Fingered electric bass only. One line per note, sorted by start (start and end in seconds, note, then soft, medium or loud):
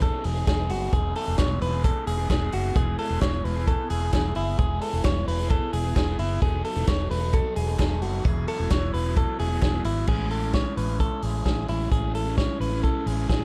0.25 0.44 E1 loud
0.48 0.71 E1 loud
0.71 0.89 F#1 medium
0.93 1.12 E1 loud
1.28 1.37 E1 medium
1.39 1.58 E1 loud
1.62 1.90 E1 loud
2.07 2.26 E1 medium
2.30 2.49 E1 loud
2.53 2.72 F#1 medium
2.76 2.94 E1 loud
3.10 3.20 E1 medium
3.22 3.40 E1 medium
3.45 3.73 E1 medium
3.90 4.09 E1 medium
4.13 4.32 E1 loud
4.36 4.55 F#1 medium
4.59 4.78 E1 loud
4.93 5.03 E1 medium
5.05 5.23 E1 loud
5.28 5.56 E1 medium
5.73 5.92 E1 loud
5.96 6.15 E1 medium
6.19 6.38 F#1 medium
6.42 6.61 E1 loud
6.76 6.86 E1 loud
6.88 7.07 E1 loud
7.11 7.39 E1 medium
7.57 7.75 E1 loud
7.79 8.02 E1 loud
8.02 8.21 F#1 medium
8.25 8.44 E1 loud
8.60 8.69 E1 loud
8.71 8.90 E1 loud
8.94 9.22 E1 medium
9.40 9.59 E1 medium
9.62 9.81 E1 loud
9.85 10.04 G#1 medium
10.08 10.63 A1 loud
10.77 11.05 A1 medium
11.23 11.42 A1 medium
11.45 11.64 A1 loud
11.69 11.88 A1 loud
11.92 12.46 A1 medium
12.60 12.89 A1 medium
13.06 13.25 A1 medium
13.29 13.44 A1 medium